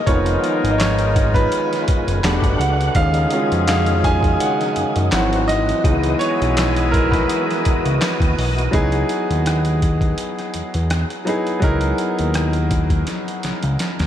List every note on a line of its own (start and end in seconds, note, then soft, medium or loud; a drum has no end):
0.00 2.18 F4 medium
0.06 0.37 F1 loud
0.06 2.22 D#3 medium
0.06 2.19 F3 medium
0.06 2.22 G#3 medium
0.06 2.20 B3 medium
0.06 2.22 B3 medium
0.06 1.83 D#4 medium
0.06 2.20 D#4 medium
0.06 1.83 F4 medium
0.06 1.83 A#4 medium
0.06 2.20 A#4 soft
0.06 0.74 C#5 loud
0.06 kick loud
0.06 closed hi-hat medium
0.26 closed hi-hat soft
0.44 closed hi-hat medium
0.64 1.48 G#1 loud
0.64 closed hi-hat medium
0.71 0.78 D#5 medium
0.78 1.30 C#5 medium
0.78 snare loud
0.78 clap medium
0.78 closed hi-hat medium
0.99 closed hi-hat soft
1.16 kick medium
1.16 closed hi-hat medium
1.34 2.55 B4 loud
1.34 kick medium
1.34 closed hi-hat soft
1.52 closed hi-hat medium
1.73 snare soft
1.73 closed hi-hat soft
1.88 1.96 F#1 soft
1.88 kick loud
1.88 closed hi-hat medium
2.07 2.21 F#1 medium
2.07 closed hi-hat medium
2.23 2.40 E1 loud
2.23 2.73 G3 medium
2.23 2.95 G3 medium
2.23 2.73 A3 soft
2.23 2.95 A3 medium
2.23 2.58 B3 medium
2.23 2.58 D4 medium
2.23 2.73 D4 soft
2.23 2.95 D4 medium
2.23 2.73 F#4 medium
2.23 2.58 G4 medium
2.23 2.95 F#5 medium
2.23 snare loud
2.23 clap medium
2.23 closed hi-hat medium
2.42 2.56 G1 medium
2.42 kick medium
2.42 closed hi-hat soft
2.59 2.90 C#2 medium
2.59 2.96 F#5 medium
2.59 closed hi-hat medium
2.81 closed hi-hat soft
2.95 3.26 D#2 loud
2.95 5.11 C#3 medium
2.95 5.11 D#3 medium
2.95 5.11 G#3 medium
2.95 4.73 C#4 medium
2.95 5.11 D#4 medium
2.95 4.73 F4 medium
2.95 4.73 G#4 medium
2.95 3.66 F5 loud
2.95 kick loud
2.95 closed hi-hat medium
3.14 closed hi-hat soft
3.31 4.37 G#3 medium
3.31 4.37 C#4 medium
3.31 4.37 F4 medium
3.31 4.36 F#4 medium
3.31 closed hi-hat medium
3.52 4.36 F2 medium
3.52 closed hi-hat medium
3.67 4.05 F5 medium
3.67 snare loud
3.67 clap medium
3.67 closed hi-hat medium
3.86 closed hi-hat medium
4.04 4.41 G#5 medium
4.04 kick medium
4.04 closed hi-hat medium
4.23 kick medium
4.23 closed hi-hat soft
4.40 5.10 F#5 medium
4.40 closed hi-hat medium
4.61 snare soft
4.61 closed hi-hat soft
4.76 4.84 F#2 soft
4.76 closed hi-hat medium
4.96 5.10 F#2 loud
4.96 closed hi-hat soft
5.11 5.73 G#1 loud
5.11 8.70 E3 medium
5.11 5.47 F#3 medium
5.11 5.81 F#3 soft
5.11 5.47 C4 medium
5.11 5.84 C4 medium
5.11 5.81 C4 medium
5.11 5.82 E4 medium
5.11 5.47 F#4 medium
5.11 8.70 F#4 medium
5.11 5.49 F#5 medium
5.11 snare loud
5.11 clap medium
5.11 closed hi-hat medium
5.33 closed hi-hat soft
5.48 6.22 D#5 loud
5.48 closed hi-hat medium
5.69 closed hi-hat soft
5.84 6.15 C#2 loud
5.84 6.89 E3 medium
5.84 6.89 F#3 soft
5.84 8.33 G#3 medium
5.84 8.33 B3 medium
5.84 6.89 B3 medium
5.84 8.71 B3 medium
5.84 6.89 D#4 medium
5.84 8.33 E4 medium
5.84 8.71 D#5 medium
5.84 kick loud
5.84 closed hi-hat medium
6.03 closed hi-hat soft
6.19 6.94 C#5 loud
6.19 closed hi-hat medium
6.41 7.25 B1 medium
6.41 closed hi-hat medium
6.57 snare loud
6.57 clap medium
6.57 closed hi-hat loud
6.76 closed hi-hat medium
6.91 7.12 A#4 medium
6.91 kick medium
6.91 closed hi-hat medium
7.11 8.33 B4 medium
7.11 kick medium
7.11 snare soft
7.11 closed hi-hat soft
7.29 closed hi-hat medium
7.51 snare soft
7.51 closed hi-hat soft
7.65 7.74 C#2 soft
7.65 kick medium
7.65 closed hi-hat medium
7.86 7.99 C#2 medium
7.86 closed hi-hat medium
8.01 snare loud
8.01 clap loud
8.01 closed hi-hat medium
8.20 8.35 D#2 medium
8.20 kick loud
8.20 closed hi-hat soft
8.38 8.68 B1 medium
8.38 open hi-hat medium
8.58 closed hi-hat soft
8.71 9.04 C#2 medium
8.71 10.01 F#3 medium
8.71 10.01 B3 medium
8.71 10.01 D#4 medium
8.71 10.02 E4 medium
8.71 10.02 G#4 medium
8.71 kick loud
8.71 closed hi-hat medium
8.92 closed hi-hat soft
9.09 closed hi-hat medium
9.30 10.15 D#2 medium
9.30 closed hi-hat soft
9.46 cross-stick loud
9.46 closed hi-hat medium
9.65 closed hi-hat soft
9.82 kick medium
9.82 closed hi-hat medium
10.01 kick medium
10.01 closed hi-hat soft
10.18 closed hi-hat medium
10.39 cross-stick soft
10.39 closed hi-hat soft
10.54 10.62 E2 soft
10.54 closed hi-hat medium
10.74 11.05 E2 medium
10.74 closed hi-hat soft
10.90 cross-stick loud
10.90 closed hi-hat medium
11.10 closed hi-hat soft
11.25 11.58 F#3 medium
11.25 11.58 B3 medium
11.25 11.59 D#4 medium
11.25 11.59 E4 medium
11.25 closed hi-hat medium
11.29 11.60 G#4 medium
11.47 closed hi-hat soft
11.60 11.93 C#2 loud
11.60 12.89 F#3 medium
11.60 12.90 B3 medium
11.60 12.90 D#4 medium
11.60 12.91 E4 medium
11.60 12.91 A#4 loud
11.60 kick loud
11.60 closed hi-hat medium
11.81 closed hi-hat soft
11.98 closed hi-hat medium
12.19 13.04 D#2 medium
12.19 closed hi-hat soft
12.34 cross-stick loud
12.34 closed hi-hat medium
12.53 closed hi-hat soft
12.71 kick medium
12.71 closed hi-hat medium
12.90 kick medium
12.90 closed hi-hat soft
13.07 snare soft
13.07 closed hi-hat medium
13.28 closed hi-hat soft
13.43 13.52 C#2 soft
13.43 snare medium
13.43 closed hi-hat medium
13.63 13.77 C#2 medium
13.63 closed hi-hat soft
13.79 snare medium
13.79 closed hi-hat medium
13.99 14.07 D#2 medium
13.99 snare medium
13.99 closed hi-hat soft